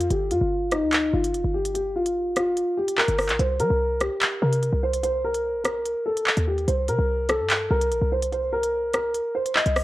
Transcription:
0.01 closed hi-hat medium
0.10 0.33 G1 loud
0.10 0.28 G4 medium
0.10 closed hi-hat medium
0.31 0.41 G2 loud
0.31 0.70 F4 medium
0.31 closed hi-hat medium
0.41 0.84 G1 loud
0.72 1.11 D#4 medium
0.72 cross-stick medium
0.72 closed hi-hat medium
0.82 1.12 D2 loud
0.92 clap loud
0.92 closed hi-hat medium
1.13 1.35 G1 loud
1.13 1.52 F4 medium
1.24 closed hi-hat medium
1.34 1.44 F1 loud
1.34 closed hi-hat medium
1.44 2.63 G1 loud
1.54 1.71 G4 medium
1.65 closed hi-hat medium
1.74 1.92 G4 medium
1.74 closed hi-hat medium
1.96 2.34 F4 medium
2.06 closed hi-hat medium
2.36 2.75 F4 medium
2.36 cross-stick medium
2.36 closed hi-hat medium
2.57 closed hi-hat medium
2.78 2.95 G4 medium
2.88 closed hi-hat medium
2.98 3.37 A#4 medium
2.98 clap loud
3.08 3.31 G1 loud
3.08 closed hi-hat medium
3.18 cross-stick loud
3.18 open hi-hat medium
3.29 3.39 A#1 medium
3.29 clap medium
3.29 closed hi-hat medium
3.39 3.61 C2 loud
3.39 3.57 C5 medium
3.39 closed hi-hat medium
3.60 3.70 G3 loud
3.60 3.98 A#4 medium
3.60 closed hi-hat medium
3.70 4.10 C2 loud
4.00 4.39 G4 medium
4.00 cross-stick medium
4.00 closed hi-hat medium
4.21 clap loud
4.21 closed hi-hat medium
4.42 4.72 C3 loud
4.42 4.81 A#4 medium
4.53 closed hi-hat medium
4.63 closed hi-hat medium
4.73 5.56 C2 loud
4.83 5.00 C5 medium
4.94 closed hi-hat medium
5.03 5.21 C5 medium
5.03 closed hi-hat medium
5.24 5.62 A#4 medium
5.34 closed hi-hat medium
5.55 5.77 A#1 loud
5.64 6.03 A#4 medium
5.64 cross-stick medium
5.64 closed hi-hat medium
5.75 5.95 C2 loud
5.86 closed hi-hat medium
6.06 6.45 A4 medium
6.17 closed hi-hat medium
6.27 clap loud
6.37 6.67 D#2 loud
6.37 closed hi-hat medium
6.47 6.65 G4 medium
6.58 closed hi-hat medium
6.68 6.90 C2 loud
6.68 6.85 C5 medium
6.68 closed hi-hat medium
6.88 6.98 C3 loud
6.88 7.27 A#4 medium
6.88 closed hi-hat medium
6.99 7.41 C2 loud
7.29 7.68 A4 medium
7.29 cross-stick loud
7.29 closed hi-hat medium
7.40 7.69 G2 loud
7.50 clap loud
7.50 closed hi-hat medium
7.70 7.93 C2 loud
7.70 8.09 A#4 medium
7.81 closed hi-hat medium
7.91 8.01 A#1 loud
7.91 closed hi-hat medium
8.02 9.21 C2 loud
8.12 8.29 C5 medium
8.22 closed hi-hat medium
8.32 8.49 C5 medium
8.32 closed hi-hat medium
8.52 8.91 A#4 medium
8.63 closed hi-hat medium
8.93 9.33 A#4 medium
8.93 cross-stick medium
8.93 closed hi-hat medium
9.14 closed hi-hat medium
9.35 9.52 C5 medium
9.46 closed hi-hat medium
9.55 9.84 D#5 medium
9.55 clap loud
9.66 9.84 C2 loud
9.66 closed hi-hat medium
9.76 cross-stick loud
9.76 open hi-hat medium

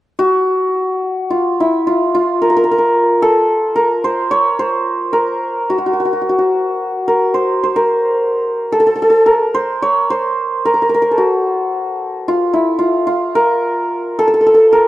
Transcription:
0.19 1.36 F#4 medium
1.30 1.66 F4 medium
1.60 1.93 E4 medium
1.87 2.14 F4 medium
2.15 5.51 F4 medium
2.42 2.49 A#4 medium
2.50 2.56 A#4 medium
2.57 2.63 A#4 medium
2.64 2.71 A#4 medium
2.71 2.78 A#4 medium
2.78 3.28 A#4 medium
3.22 3.82 A4 medium
3.76 5.12 A#4 medium
4.04 4.37 C5 medium
4.31 4.65 C#5 medium
4.59 7.23 C5 medium
5.13 7.07 A#4 medium
5.70 5.78 F#4 medium
5.78 5.86 F#4 soft
5.86 5.93 F#4 soft
5.93 5.99 F#4 soft
6.00 6.05 F#4 soft
6.05 6.12 F#4 soft
6.13 6.21 F#4 soft
6.22 6.29 F#4 soft
6.29 6.38 F#4 medium
6.38 9.62 F#4 soft
7.08 7.76 A#4 medium
7.34 7.63 C5 medium
7.63 9.54 C5 medium
7.76 8.78 A#4 medium
8.72 8.79 A4 medium
8.80 8.86 A4 medium
8.87 8.95 A4 medium
8.96 9.02 A4 soft
9.02 9.09 A4 medium
9.10 9.32 A4 medium
9.26 10.65 A#4 medium
9.54 9.88 C5 medium
9.82 10.16 C#5 medium
10.10 12.74 C5 medium
10.65 10.73 A#4 medium
10.74 10.82 A#4 medium
10.82 10.89 A#4 medium
10.89 10.94 A#4 medium
10.94 11.02 A#4 medium
11.02 11.17 A#4 medium
11.11 13.41 A4 soft
11.18 12.34 F#4 medium
12.28 12.60 F4 medium
12.54 12.85 E4 medium
12.79 13.06 F4 medium
13.07 14.88 F4 medium
13.35 14.25 A#4 medium
14.19 14.27 A4 medium
14.28 14.33 A4 medium
14.34 14.40 A4 medium
14.41 14.46 A4 soft
14.47 14.54 A4 medium
14.54 14.79 A4 medium
14.73 14.88 A#4 medium

